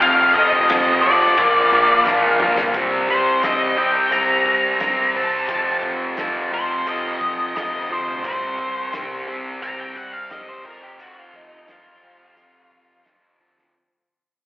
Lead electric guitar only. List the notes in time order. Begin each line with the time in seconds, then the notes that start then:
0.01 F5
0.34 D#5
1.02 D5
3.10 C5
3.44 D#5
3.78 G5
4.12 A#5
5.17 A5
6.54 C5
6.89 D#5
7.58 D#5
7.93 C5
8.26 C5
9.63 A#5
9.80 G5
9.97 F#5
10.13 F5
10.32 D#5
10.49 C5
10.66 A#4
10.83 G4
11.02 F#4
11.19 F4
11.36 D#4
11.71 F4